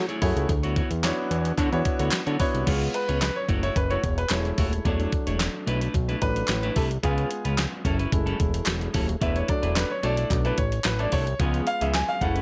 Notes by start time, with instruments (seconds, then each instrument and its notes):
0.09 clean electric guitar A3 E4 G#4 C#5, closed hi-hat
0.21 analog synth bass F#2, grand piano A3 E4 F#4 G#4 C#5, muted clean electric guitar stroke, kick, open hi-hat
0.36 analog synth bass C#2, muted clean electric guitar stroke, closed hi-hat
0.49 analog synth bass D2, muted clean electric guitar stroke, kick, closed hi-hat
0.63 clean electric guitar B3 E4 F#4 C#5, closed hi-hat
0.76 clean electric guitar B3 E4 F#4 C#5, kick, closed hi-hat
0.91 analog synth bass E2, muted clean electric guitar stroke, closed hi-hat
1.03 grand piano B3 D4 E4 F#4 C#5, muted clean electric guitar stroke, snare, clap, closed hi-hat
1.18 muted clean electric guitar stroke
1.31 analog synth bass E2, closed hi-hat
1.45 muted clean electric guitar stroke, closed hi-hat
1.58 analog synth bass D3, clean electric guitar B3 E4 F#4 C#5, kick, clap, closed hi-hat
1.72 analog synth bass E2, grand piano B3 D4 E4 F#4 C#5, muted clean electric guitar stroke, closed hi-hat
1.85 muted clean electric guitar stroke, kick, closed hi-hat
1.99 analog synth bass D2, clean electric guitar B3 E4 F#4 C#5, closed hi-hat
2.11 clap, closed hi-hat
2.13 snare, clap
2.26 analog synth bass D3, clean electric guitar B3 E4 F#4 C#5, closed hi-hat
2.39 grand piano B3 D4 E4 F#4 C#5, muted clean electric guitar stroke, kick, open hi-hat
2.54 analog synth bass C2, muted clean electric guitar stroke, closed hi-hat
2.66 analog synth bass C#2, grand piano G#3 B3 F4, clean electric guitar B3 F4 G#4 C#5, kick, closed hi-hat, crash
2.81 closed hi-hat
2.94 grand piano B4, muted clean electric guitar stroke, closed hi-hat
3.08 analog synth bass C#2, clean electric guitar B3 F4 G#4 C#5, closed hi-hat
3.21 grand piano B4, muted clean electric guitar stroke, snare, clap, closed hi-hat
3.36 grand piano C#5, muted clean electric guitar stroke
3.48 analog synth bass F#1, clean electric guitar A3 E4 F#4 C#5, kick, closed hi-hat
3.63 clean electric guitar A3 E4 F#4 E5, grand piano C#5, closed hi-hat
3.76 analog synth bass F#1, grand piano B4, muted clean electric guitar stroke, kick, closed hi-hat
3.90 clean electric guitar A3 E4 F#4 C#5, grand piano C#5, closed hi-hat
4.03 analog synth bass E1, muted clean electric guitar stroke, kick, closed hi-hat
4.18 grand piano B4, muted clean electric guitar stroke, closed hi-hat
4.29 analog synth bass E1, grand piano G#3 A3 C#5, clap, closed hi-hat
4.31 grand piano E4, snare, clap
4.45 muted clean electric guitar stroke, closed hi-hat
4.58 analog synth bass D#1, clean electric guitar A3 E4 F#4 C#5, kick, open hi-hat
4.72 muted clean electric guitar stroke, closed hi-hat
4.85 analog synth bass E1, grand piano F#3 A3 D4, clean electric guitar A3 D4 E4 C#5, kick, closed hi-hat
5.00 closed hi-hat
5.12 muted clean electric guitar stroke, kick, closed hi-hat
5.27 analog synth bass E1, clean electric guitar A3 D4 E4 C#5, closed hi-hat
5.40 muted clean electric guitar stroke, snare, clap, closed hi-hat
5.54 muted clean electric guitar stroke
5.66 analog synth bass B1, clean electric guitar A3 D4 E4 B4, closed hi-hat
5.81 clean electric guitar A3 D4 E4 B4, closed hi-hat
5.94 analog synth bass B1, muted clean electric guitar stroke, kick, closed hi-hat
6.09 clean electric guitar A3 D4 E4 B4, closed hi-hat
6.21 analog synth bass A1, grand piano F#3 A3 D4 B4, muted clean electric guitar stroke, kick, closed hi-hat
6.36 muted clean electric guitar stroke, closed hi-hat
6.48 analog synth bass A1, muted clean electric guitar stroke, snare, clap, closed hi-hat
6.63 clean electric guitar A3 D4 E4 B4, closed hi-hat
6.76 analog synth bass C2, clean electric guitar A3 D4 E4 B4, grand piano A4, kick, open hi-hat
6.91 muted clean electric guitar stroke, closed hi-hat
7.03 analog synth bass C#2, grand piano G#3 B3 F4 G#4, clean electric guitar G#3 C#4 F4 B4, kick, closed hi-hat
7.18 closed hi-hat
7.31 muted clean electric guitar stroke, closed hi-hat
7.45 analog synth bass C#2, clean electric guitar G#3 C#4 F4 B4, closed hi-hat
7.58 snare, clap, closed hi-hat
7.72 muted clean electric guitar stroke
7.85 analog synth bass F#1, clean electric guitar F#3 C#4 E4 A4, kick, closed hi-hat
7.99 clean electric guitar F#3 C#4 E4 B4, closed hi-hat
8.12 analog synth bass F#1, grand piano G#3 A3 E4, muted clean electric guitar stroke, kick, closed hi-hat
8.26 clean electric guitar F#3 C#4 E4 A4, closed hi-hat
8.39 analog synth bass E1, muted clean electric guitar stroke, kick, closed hi-hat
8.54 muted clean electric guitar stroke, closed hi-hat
8.66 analog synth bass E1, clap, closed hi-hat
8.67 snare, clap
8.81 muted clean electric guitar stroke, closed hi-hat
8.94 analog synth bass D#1, clean electric guitar F#3 C#4 E4 A4, kick, open hi-hat
9.08 muted clean electric guitar stroke, closed hi-hat
9.21 analog synth bass E1, clean electric guitar A3 D4 E4 B4, grand piano E5, kick, closed hi-hat
9.36 grand piano C#5, closed hi-hat
9.48 grand piano F#3 A3 D4 D5, muted clean electric guitar stroke, kick, closed hi-hat
9.63 analog synth bass E1, clean electric guitar A3 D4 E4 B4, closed hi-hat
9.76 grand piano B4, muted clean electric guitar stroke, snare, clap, closed hi-hat
9.90 grand piano C#5, muted clean electric guitar stroke
10.03 analog synth bass B1, clean electric guitar A3 D4 E4 A4, grand piano D5, closed hi-hat
10.17 clean electric guitar A3 D4 E4 A4, closed hi-hat
10.30 analog synth bass B1, grand piano F#3 A3 D4, muted clean electric guitar stroke, kick, clap, closed hi-hat
10.45 clean electric guitar A3 D4 E4 A4, grand piano B4, closed hi-hat
10.58 analog synth bass A1, grand piano C#5, muted clean electric guitar stroke, kick, closed hi-hat
10.72 muted clean electric guitar stroke, closed hi-hat
10.84 analog synth bass A1, grand piano B4, muted clean electric guitar stroke, snare, clap, closed hi-hat
10.99 clean electric guitar A3 D4 E4 A4, grand piano D5, closed hi-hat
11.12 analog synth bass C2, clean electric guitar A3 D4 E4 A4, grand piano C#5, kick, open hi-hat
11.27 muted clean electric guitar stroke, closed hi-hat
11.39 analog synth bass C#2, clean electric guitar F3 B3 C#4 G#4, grand piano G#3 B3 F4, kick, closed hi-hat
11.54 closed hi-hat
11.67 grand piano F5, muted clean electric guitar stroke, closed hi-hat
11.81 analog synth bass C#2, clean electric guitar F3 B3 C#4 G#4, grand piano E5, closed hi-hat
11.94 grand piano G#5, snare, clap, closed hi-hat
12.08 grand piano F5, muted clean electric guitar stroke
12.21 analog synth bass F#1, grand piano G#3 A3 E4 F#5, clean electric guitar A3 C#4 E4 A4, kick, closed hi-hat
12.35 clean electric guitar A3 C#4 E4 B4, closed hi-hat